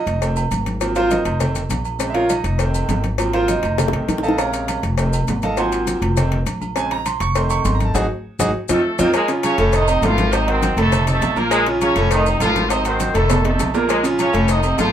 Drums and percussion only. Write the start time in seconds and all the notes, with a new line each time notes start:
0.07 cowbell, maracas
0.22 cowbell, high conga, low agogo, maracas
0.36 high conga, low agogo, maracas
0.51 cowbell, high conga, low agogo, maracas
0.66 cowbell, high conga, maracas
0.81 cowbell, high conga, low agogo, maracas
0.95 cowbell, high conga, low agogo, maracas
1.11 cowbell, high conga, maracas
1.25 cowbell, low agogo, maracas
1.40 cowbell, high conga, low conga, low agogo, maracas
1.55 cowbell, high conga, low conga, maracas
1.70 cowbell, high conga, low timbale, low agogo, maracas
1.85 low agogo, maracas
2.00 cowbell, high conga, low agogo, maracas
2.15 cowbell, high conga
2.29 cowbell, high conga, low agogo, maracas
2.44 cowbell, high conga, maracas
2.59 cowbell, high conga, low agogo, maracas
2.74 high conga, low agogo, maracas
2.89 cowbell, high conga, low timbale, low agogo, maracas
3.04 cowbell, high conga, maracas
3.18 cowbell, high conga, low agogo, maracas
3.33 cowbell, high conga, low agogo
3.48 cowbell, high conga, maracas
3.63 cowbell, low agogo, maracas
3.78 cowbell, high bongo, high conga, low conga, low agogo, maracas
3.88 high bongo
3.93 cowbell, high conga, low conga
4.09 cowbell, low bongo, high conga, low agogo, maracas
4.18 low bongo
4.24 low agogo, maracas
4.28 low bongo
4.38 cowbell, high conga, low agogo, maracas
4.53 cowbell, high conga, maracas
4.68 cowbell, high conga, low agogo, maracas
4.83 cowbell, high conga, maracas
4.98 cowbell, high conga, low agogo, maracas
5.13 low agogo, maracas
5.28 cowbell, high conga, low timbale, low agogo, maracas
5.42 cowbell, high conga, maracas
5.57 cowbell, high conga, low agogo, maracas
5.72 cowbell, high conga, low agogo, maracas
5.87 cowbell, high conga, maracas
6.02 cowbell, low agogo, maracas
6.17 cowbell, high conga, low conga, low agogo, maracas
6.32 cowbell, high conga, low conga
6.46 cowbell, high conga, low agogo, maracas
6.62 high conga, low agogo, maracas
6.76 cowbell, high conga, low agogo, maracas
6.91 cowbell, high conga
7.06 cowbell, high conga, low agogo, maracas
7.20 cowbell, high conga, maracas
7.35 cowbell, high conga, low agogo, maracas
7.50 high conga, low agogo, maracas
7.65 cowbell, high conga, low timbale, low agogo, maracas
7.80 cowbell, high conga, maracas
7.95 cowbell, high conga, high timbale, maracas
8.39 cowbell, high conga, high timbale, maracas
8.69 cowbell, high conga, high timbale, maracas
8.99 cowbell, high conga, high timbale, maracas
9.14 cowbell, high conga, low agogo, maracas
9.28 cowbell, high conga, maracas
9.43 cowbell, high conga, low agogo, maracas
9.58 cowbell, high conga, maracas
9.73 cowbell, high conga, low agogo, maracas
9.88 high conga, low agogo, maracas
10.03 cowbell, high conga, low timbale, low agogo, maracas
10.18 cowbell, high conga, maracas
10.33 cowbell, high conga, low agogo, maracas
10.48 cowbell, high conga, low agogo
10.63 cowbell, high conga, maracas
10.77 cowbell, low agogo, maracas
10.92 cowbell, high conga, low conga, low agogo, maracas
11.07 cowbell, high conga, low conga, maracas
11.22 cowbell, high conga, low timbale, low agogo, maracas
11.36 high conga, low agogo, maracas
11.51 cowbell, high conga, low agogo, maracas
11.66 cowbell, high conga
11.81 cowbell, high conga, low agogo, maracas
11.96 cowbell, maracas
12.11 cowbell, high conga, low agogo, maracas
12.26 high conga, low agogo, maracas
12.40 cowbell, high conga, low agogo, maracas
12.56 cowbell, high conga, maracas
12.70 cowbell, high conga, low agogo, maracas
12.85 cowbell, high conga, low agogo, maracas
13.00 cowbell, high conga, high timbale, maracas
13.15 cowbell, high timbale, low agogo, maracas
13.30 cowbell, high conga, low conga, low timbale, low agogo, maracas
13.45 cowbell, low timbale
13.59 cowbell, high conga, low timbale, low agogo, maracas
13.74 low timbale, low agogo, maracas
13.89 cowbell, high conga, low agogo, maracas
14.04 cowbell, high conga, maracas
14.19 cowbell, high conga, low agogo, maracas
14.33 cowbell, high conga, maracas
14.48 cowbell, high conga, low agogo, maracas
14.63 high conga, low agogo, maracas
14.78 cowbell, high conga, low timbale, low agogo, maracas